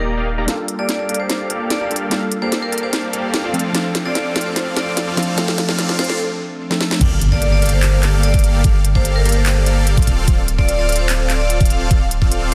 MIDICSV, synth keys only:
0, 0, Header, 1, 2, 480
1, 0, Start_track
1, 0, Key_signature, -2, "minor"
1, 0, Tempo, 408163
1, 563, Time_signature, 4, 2, 24, 8
1, 14747, End_track
2, 0, Start_track
2, 0, Title_t, "Synth keys"
2, 0, Program_c, 0, 88
2, 0, Control_c, 0, 64, 127
2, 0, Note_on_c, 0, 55, 71
2, 0, Note_on_c, 0, 63, 67
2, 0, Note_on_c, 0, 65, 66
2, 283, Note_off_c, 0, 55, 0
2, 295, Note_off_c, 0, 63, 0
2, 300, Note_off_c, 0, 65, 0
2, 539, Note_on_c, 0, 55, 82
2, 551, Note_on_c, 0, 58, 72
2, 562, Note_on_c, 0, 62, 75
2, 574, Note_on_c, 0, 65, 73
2, 579, Control_c, 0, 64, 0
2, 586, Note_on_c, 0, 69, 89
2, 796, Control_c, 0, 64, 127
2, 2204, Note_off_c, 0, 55, 0
2, 2210, Note_off_c, 0, 58, 0
2, 2215, Note_off_c, 0, 62, 0
2, 2221, Note_off_c, 0, 65, 0
2, 2227, Note_off_c, 0, 69, 0
2, 2230, Note_on_c, 0, 55, 70
2, 2235, Note_on_c, 0, 58, 67
2, 2241, Note_on_c, 0, 62, 68
2, 2247, Note_on_c, 0, 65, 66
2, 2254, Note_on_c, 0, 69, 79
2, 2445, Note_off_c, 0, 55, 0
2, 2452, Note_off_c, 0, 58, 0
2, 2455, Note_off_c, 0, 62, 0
2, 2458, Note_off_c, 0, 65, 0
2, 2459, Note_on_c, 0, 55, 80
2, 2461, Note_off_c, 0, 69, 0
2, 2470, Note_on_c, 0, 58, 74
2, 2482, Note_on_c, 0, 62, 74
2, 2493, Note_on_c, 0, 65, 71
2, 2506, Note_on_c, 0, 69, 89
2, 4124, Note_off_c, 0, 55, 0
2, 4129, Note_off_c, 0, 58, 0
2, 4135, Note_off_c, 0, 62, 0
2, 4141, Note_off_c, 0, 65, 0
2, 4147, Note_off_c, 0, 69, 0
2, 4151, Note_on_c, 0, 53, 74
2, 4156, Note_on_c, 0, 57, 67
2, 4161, Note_on_c, 0, 60, 66
2, 4169, Note_on_c, 0, 62, 69
2, 4174, Note_on_c, 0, 69, 80
2, 4179, Control_c, 0, 64, 0
2, 4365, Note_off_c, 0, 53, 0
2, 4372, Note_off_c, 0, 57, 0
2, 4375, Note_off_c, 0, 60, 0
2, 4378, Note_off_c, 0, 62, 0
2, 4379, Note_on_c, 0, 53, 86
2, 4380, Control_c, 0, 64, 127
2, 4381, Note_off_c, 0, 69, 0
2, 4390, Note_on_c, 0, 57, 78
2, 4403, Note_on_c, 0, 60, 77
2, 4414, Note_on_c, 0, 62, 77
2, 4426, Note_on_c, 0, 69, 96
2, 6044, Note_off_c, 0, 53, 0
2, 6049, Note_off_c, 0, 57, 0
2, 6056, Note_off_c, 0, 60, 0
2, 6061, Note_off_c, 0, 62, 0
2, 6067, Note_off_c, 0, 69, 0
2, 6071, Note_on_c, 0, 53, 77
2, 6077, Note_on_c, 0, 57, 68
2, 6084, Note_on_c, 0, 60, 70
2, 6089, Note_on_c, 0, 62, 69
2, 6095, Note_on_c, 0, 69, 83
2, 6287, Note_off_c, 0, 53, 0
2, 6293, Note_off_c, 0, 57, 0
2, 6296, Note_off_c, 0, 60, 0
2, 6299, Note_off_c, 0, 62, 0
2, 6301, Note_on_c, 0, 53, 90
2, 6302, Note_off_c, 0, 69, 0
2, 6313, Note_on_c, 0, 57, 75
2, 6325, Note_on_c, 0, 60, 79
2, 6336, Note_on_c, 0, 62, 77
2, 6347, Note_on_c, 0, 69, 94
2, 7852, Note_off_c, 0, 53, 0
2, 7858, Note_off_c, 0, 57, 0
2, 7864, Note_off_c, 0, 60, 0
2, 7869, Note_off_c, 0, 62, 0
2, 7875, Note_off_c, 0, 69, 0
2, 7877, Note_on_c, 0, 53, 84
2, 7883, Note_on_c, 0, 57, 77
2, 7889, Note_on_c, 0, 60, 77
2, 7894, Note_on_c, 0, 62, 74
2, 7900, Note_on_c, 0, 69, 95
2, 8210, Note_off_c, 0, 53, 0
2, 8213, Note_off_c, 0, 57, 0
2, 8216, Note_off_c, 0, 60, 0
2, 8219, Note_off_c, 0, 62, 0
2, 8222, Note_off_c, 0, 69, 0
2, 8257, Control_c, 0, 64, 0
2, 14747, End_track
0, 0, End_of_file